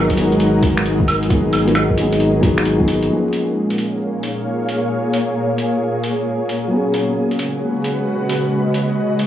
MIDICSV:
0, 0, Header, 1, 5, 480
1, 0, Start_track
1, 0, Tempo, 451128
1, 1384, Time_signature, 4, 2, 24, 8
1, 9861, End_track
2, 0, Start_track
2, 0, Title_t, "Ambient pad"
2, 0, Program_c, 0, 92
2, 0, Note_on_c, 0, 56, 100
2, 0, Note_on_c, 0, 63, 85
2, 0, Note_on_c, 0, 70, 84
2, 0, Note_on_c, 0, 71, 78
2, 0, Note_on_c, 0, 78, 98
2, 3295, Note_on_c, 0, 46, 90
2, 3299, Note_off_c, 0, 71, 0
2, 3303, Note_off_c, 0, 78, 0
2, 3306, Note_off_c, 0, 56, 0
2, 3550, Note_on_c, 0, 58, 89
2, 3560, Note_on_c, 0, 68, 77
2, 3695, Note_on_c, 0, 73, 75
2, 3763, Note_on_c, 0, 77, 68
2, 4315, Note_off_c, 0, 63, 0
2, 4497, Note_off_c, 0, 70, 0
2, 7140, Note_off_c, 0, 46, 0
2, 7142, Note_off_c, 0, 58, 0
2, 7143, Note_on_c, 0, 49, 85
2, 7487, Note_on_c, 0, 56, 85
2, 7492, Note_on_c, 0, 66, 94
2, 7787, Note_off_c, 0, 68, 0
2, 7816, Note_on_c, 0, 71, 89
2, 7947, Note_off_c, 0, 77, 0
2, 8300, Note_on_c, 0, 75, 80
2, 8458, Note_off_c, 0, 73, 0
2, 9861, Note_off_c, 0, 49, 0
2, 9861, Note_off_c, 0, 56, 0
2, 9861, Note_off_c, 0, 66, 0
2, 9861, Note_off_c, 0, 71, 0
2, 9861, Note_off_c, 0, 75, 0
2, 9861, End_track
3, 0, Start_track
3, 0, Title_t, "Felt piano"
3, 0, Program_c, 1, 0
3, 0, Control_c, 1, 64, 127
3, 0, Note_on_c, 1, 54, 94
3, 0, Note_on_c, 1, 59, 86
3, 0, Note_on_c, 1, 63, 83
3, 0, Note_on_c, 1, 68, 101
3, 127, Note_off_c, 1, 54, 0
3, 143, Note_on_c, 1, 54, 88
3, 155, Note_off_c, 1, 59, 0
3, 171, Note_on_c, 1, 59, 77
3, 172, Note_off_c, 1, 63, 0
3, 178, Note_off_c, 1, 68, 0
3, 202, Note_on_c, 1, 63, 77
3, 229, Note_on_c, 1, 68, 95
3, 1344, Note_off_c, 1, 54, 0
3, 1358, Note_off_c, 1, 59, 0
3, 1370, Note_on_c, 1, 54, 85
3, 1373, Note_off_c, 1, 63, 0
3, 1384, Note_on_c, 1, 59, 80
3, 1387, Note_off_c, 1, 68, 0
3, 1399, Note_on_c, 1, 63, 78
3, 1413, Note_on_c, 1, 68, 96
3, 1737, Note_off_c, 1, 54, 0
3, 1744, Note_off_c, 1, 59, 0
3, 1751, Note_off_c, 1, 63, 0
3, 1758, Note_off_c, 1, 68, 0
3, 1762, Note_on_c, 1, 54, 92
3, 1776, Note_on_c, 1, 59, 86
3, 1789, Note_on_c, 1, 63, 85
3, 1804, Note_on_c, 1, 68, 98
3, 2074, Note_off_c, 1, 54, 0
3, 2082, Note_off_c, 1, 59, 0
3, 2088, Note_off_c, 1, 63, 0
3, 2090, Note_on_c, 1, 54, 90
3, 2096, Note_off_c, 1, 68, 0
3, 2102, Note_on_c, 1, 59, 80
3, 2115, Note_on_c, 1, 63, 83
3, 2131, Note_on_c, 1, 68, 96
3, 2548, Note_off_c, 1, 54, 0
3, 2562, Note_off_c, 1, 59, 0
3, 2564, Note_on_c, 1, 54, 101
3, 2573, Note_off_c, 1, 63, 0
3, 2578, Note_on_c, 1, 59, 94
3, 2581, Note_off_c, 1, 68, 0
3, 2590, Note_on_c, 1, 63, 93
3, 2605, Note_on_c, 1, 68, 110
3, 2747, Note_off_c, 1, 54, 0
3, 2754, Note_off_c, 1, 59, 0
3, 2760, Note_off_c, 1, 63, 0
3, 2768, Note_off_c, 1, 68, 0
3, 2962, Note_on_c, 1, 54, 88
3, 2977, Note_on_c, 1, 59, 84
3, 2993, Note_on_c, 1, 63, 86
3, 3005, Note_on_c, 1, 68, 97
3, 3084, Note_off_c, 1, 54, 0
3, 3091, Note_off_c, 1, 59, 0
3, 3099, Note_off_c, 1, 63, 0
3, 3105, Note_off_c, 1, 68, 0
3, 3267, Note_on_c, 1, 53, 67
3, 3298, Note_on_c, 1, 58, 62
3, 3318, Control_c, 1, 64, 0
3, 3325, Note_on_c, 1, 61, 59
3, 3352, Note_on_c, 1, 68, 72
3, 3481, Control_c, 1, 64, 127
3, 7103, Note_on_c, 1, 54, 70
3, 7106, Note_off_c, 1, 53, 0
3, 7121, Note_off_c, 1, 58, 0
3, 7132, Note_on_c, 1, 59, 66
3, 7135, Note_off_c, 1, 61, 0
3, 7148, Note_off_c, 1, 68, 0
3, 7156, Control_c, 1, 64, 0
3, 7159, Note_on_c, 1, 61, 65
3, 7186, Note_on_c, 1, 68, 77
3, 7337, Control_c, 1, 64, 127
3, 9861, Note_off_c, 1, 54, 0
3, 9861, Note_off_c, 1, 59, 0
3, 9861, Note_off_c, 1, 61, 0
3, 9861, Note_off_c, 1, 68, 0
3, 9861, End_track
4, 0, Start_track
4, 0, Title_t, "Sub bass"
4, 0, Program_c, 2, 38
4, 0, Note_on_c, 2, 32, 88
4, 3287, Note_off_c, 2, 32, 0
4, 9861, End_track
5, 0, Start_track
5, 0, Title_t, "Drums"
5, 104, Note_on_c, 9, 36, 57
5, 105, Note_on_c, 9, 46, 45
5, 186, Note_off_c, 9, 46, 0
5, 186, Note_on_c, 9, 46, 78
5, 210, Note_off_c, 9, 36, 0
5, 292, Note_off_c, 9, 46, 0
5, 343, Note_on_c, 9, 42, 31
5, 425, Note_off_c, 9, 42, 0
5, 425, Note_on_c, 9, 42, 54
5, 531, Note_off_c, 9, 42, 0
5, 666, Note_on_c, 9, 46, 76
5, 667, Note_on_c, 9, 36, 101
5, 773, Note_off_c, 9, 36, 0
5, 773, Note_off_c, 9, 46, 0
5, 824, Note_on_c, 9, 26, 101
5, 824, Note_on_c, 9, 42, 30
5, 911, Note_off_c, 9, 42, 0
5, 911, Note_on_c, 9, 42, 55
5, 930, Note_off_c, 9, 26, 0
5, 1017, Note_off_c, 9, 42, 0
5, 1064, Note_on_c, 9, 36, 95
5, 1148, Note_on_c, 9, 46, 77
5, 1148, Note_on_c, 9, 75, 68
5, 1171, Note_off_c, 9, 36, 0
5, 1255, Note_off_c, 9, 46, 0
5, 1255, Note_off_c, 9, 75, 0
5, 1306, Note_on_c, 9, 42, 56
5, 1386, Note_off_c, 9, 42, 0
5, 1386, Note_on_c, 9, 42, 58
5, 1387, Note_on_c, 9, 36, 114
5, 1492, Note_off_c, 9, 42, 0
5, 1493, Note_off_c, 9, 36, 0
5, 1625, Note_on_c, 9, 46, 78
5, 1625, Note_on_c, 9, 75, 41
5, 1732, Note_off_c, 9, 46, 0
5, 1732, Note_off_c, 9, 75, 0
5, 1784, Note_on_c, 9, 42, 56
5, 1863, Note_off_c, 9, 42, 0
5, 1863, Note_on_c, 9, 26, 105
5, 1863, Note_on_c, 9, 42, 57
5, 1863, Note_on_c, 9, 75, 57
5, 1970, Note_off_c, 9, 26, 0
5, 1970, Note_off_c, 9, 42, 0
5, 1970, Note_off_c, 9, 75, 0
5, 2024, Note_on_c, 9, 36, 58
5, 2103, Note_on_c, 9, 46, 79
5, 2131, Note_off_c, 9, 36, 0
5, 2209, Note_off_c, 9, 46, 0
5, 2261, Note_on_c, 9, 46, 45
5, 2342, Note_on_c, 9, 42, 57
5, 2368, Note_off_c, 9, 46, 0
5, 2448, Note_off_c, 9, 42, 0
5, 2585, Note_on_c, 9, 46, 76
5, 2586, Note_on_c, 9, 36, 99
5, 2691, Note_off_c, 9, 46, 0
5, 2693, Note_off_c, 9, 36, 0
5, 2743, Note_on_c, 9, 26, 100
5, 2743, Note_on_c, 9, 42, 31
5, 2824, Note_off_c, 9, 42, 0
5, 2824, Note_on_c, 9, 42, 57
5, 2849, Note_off_c, 9, 26, 0
5, 2930, Note_off_c, 9, 42, 0
5, 2983, Note_on_c, 9, 36, 60
5, 3061, Note_on_c, 9, 46, 74
5, 3090, Note_off_c, 9, 36, 0
5, 3168, Note_off_c, 9, 46, 0
5, 3219, Note_on_c, 9, 42, 58
5, 3326, Note_off_c, 9, 42, 0
5, 3541, Note_on_c, 9, 46, 64
5, 3647, Note_off_c, 9, 46, 0
5, 3940, Note_on_c, 9, 46, 35
5, 4024, Note_off_c, 9, 46, 0
5, 4024, Note_on_c, 9, 46, 61
5, 4131, Note_off_c, 9, 46, 0
5, 4502, Note_on_c, 9, 46, 64
5, 4608, Note_off_c, 9, 46, 0
5, 4986, Note_on_c, 9, 46, 61
5, 5092, Note_off_c, 9, 46, 0
5, 5464, Note_on_c, 9, 46, 63
5, 5570, Note_off_c, 9, 46, 0
5, 5940, Note_on_c, 9, 46, 64
5, 6046, Note_off_c, 9, 46, 0
5, 6421, Note_on_c, 9, 46, 65
5, 6528, Note_off_c, 9, 46, 0
5, 6907, Note_on_c, 9, 46, 60
5, 7013, Note_off_c, 9, 46, 0
5, 7381, Note_on_c, 9, 46, 64
5, 7488, Note_off_c, 9, 46, 0
5, 7780, Note_on_c, 9, 46, 35
5, 7864, Note_off_c, 9, 46, 0
5, 7864, Note_on_c, 9, 46, 63
5, 7970, Note_off_c, 9, 46, 0
5, 8345, Note_on_c, 9, 46, 64
5, 8452, Note_off_c, 9, 46, 0
5, 8825, Note_on_c, 9, 46, 63
5, 8931, Note_off_c, 9, 46, 0
5, 9302, Note_on_c, 9, 46, 64
5, 9409, Note_off_c, 9, 46, 0
5, 9780, Note_on_c, 9, 46, 64
5, 9861, Note_off_c, 9, 46, 0
5, 9861, End_track
0, 0, End_of_file